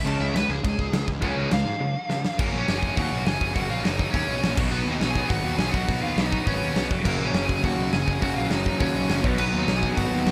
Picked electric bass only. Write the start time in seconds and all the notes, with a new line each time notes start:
0.05 C#2
0.19 C#2
0.34 C#2
0.49 C#2
0.65 C#2
0.79 C#2
0.92 C#2
1.08 C#2
1.23 C#2
1.36 C#2
1.52 C#2
1.65 G#2
2.39 F#1
2.53 A#1
2.68 F#1
2.98 D#2
3.11 B1
3.25 F#1
3.41 F#1
3.56 F#1
3.69 A#1
3.83 F#1
4.14 D#2
4.28 B1
4.42 A#1
4.58 B1
4.71 B1
4.86 D#2
5.00 B1
5.30 G#1
5.44 D#2
5.58 B1
5.74 B1
5.89 B1
6.01 D#2
6.17 B1
6.47 G#1
6.61 D#2
6.75 B1
6.91 F1
7.05 F#1
7.18 A#1
7.33 F#1
7.64 D#2
7.78 B1
7.92 F#1
8.08 F#1
8.22 F#1
8.35 A#1
8.50 F#1
8.81 D#2
8.94 B1
9.09 F#1
9.24 B1
9.38 B1
9.53 D#2
9.67 B1
9.98 G#1
10.12 D#2
10.26 B1